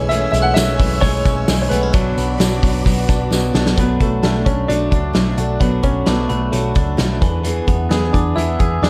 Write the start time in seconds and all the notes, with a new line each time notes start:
Already playing: B1 E3 G#3 C#4 G#4 C#5 E5 G#5 E6
0.09 B2 E3 A3 C#4 G#4 E5 E6, hi-hat pedal, open hi-hat
0.31 B1 G#3 E5 E6, hi-hat pedal, open hi-hat, tambourine
0.42 F#5 F#6
0.54 B1 E3 A3 C#4 G#4 E5 E6, snare, hi-hat pedal, open hi-hat, tambourine
0.77 B1 E3 A3 C#4 G#4, kick, hi-hat pedal, open hi-hat
1.00 B1 E3 G#3 A3 C#4 G#4 C#5 C#6, kick, hi-hat pedal, open hi-hat, tambourine
1.25 B1 C#4, kick, hi-hat pedal, open hi-hat, tambourine
1.48 B1 E3 G#3 A3 C#4 G#4, snare, hi-hat pedal, open hi-hat, tambourine
1.62 C#5 C#6
1.69 B1 A3 B3 C#4 G#4 B4 B5, hi-hat pedal, open hi-hat
1.73 tambourine
1.83 C#4
1.93 B1 B2 F#3 B3 D4 F#4 D5 B5 D6, kick, hi-hat pedal, open hi-hat
2.17 B1 B3, hi-hat pedal, open hi-hat, tambourine
2.38 B1 F#3 B3 D4 F#4, snare, hi-hat pedal, open hi-hat, tambourine
2.62 B1 F#3 B3 D4 F#4, kick, hi-hat pedal, open hi-hat, tambourine
2.85 B1 F#3 B3 D4 F#4, kick, hi-hat pedal, open hi-hat, tambourine
3.08 B1 D4, kick, hi-hat pedal, open hi-hat, tambourine
3.30 B1 F#3 B3 D4 F#4, snare, tambourine
3.53 B1 B3 D4 F#4, snare, tambourine
3.66 snare
3.76 B1 B2 F#3 A3 B3 D4 F#4 B5, kick, closed hi-hat
4.00 B1 F#3 A3 D4 F#4 A5, kick, closed hi-hat
4.23 B1 B2 F#3 A3 D4 F#4 A5, snare, closed hi-hat
4.45 B1 A3 C#4 C#6, kick, closed hi-hat
4.68 B1 F#3 A3 D4 F#4 D6, closed hi-hat
4.92 C#2 A3 D4 F#4, kick, closed hi-hat
5.13 B1 B2 F#3 A3 D4 F#4, snare, closed hi-hat
5.38 B1 A3 D4 F#4, closed hi-hat
5.60 B1 B2 F#3 A3 B3 D4 F#4 B5, kick, closed hi-hat
5.83 B1 F#3 A3 C#4 D4 F#4 C#6, kick, closed hi-hat
6.06 B1 B2 F#3 A3 B3 D4 F#4 B5, snare, closed hi-hat
6.29 B1 A3 B3 B5, closed hi-hat
6.52 B1 F#3 A3 D4 F#4 A5, closed hi-hat
6.74 C#2 A3 D4 F#4, kick, closed hi-hat
6.97 B1 B2 F#3 A3 D4 F#4, snare, closed hi-hat
7.20 E2 E3 B3 D4 G#4, kick, closed hi-hat
7.44 E3 B3 D4 G#4, closed hi-hat
7.67 E2 B3 D4 G#4, kick, closed hi-hat
7.89 E2 E3 B3 D4 G#4 B5, snare, closed hi-hat
8.13 E2 D4 D6, kick, closed hi-hat
8.36 E2 E3 B3 D4 E4 G#4 E6, closed hi-hat
8.59 E2 B3 D4 G#4, kick, closed hi-hat
8.82 E2 E3 B3 D4 G#4 D6, snare, closed hi-hat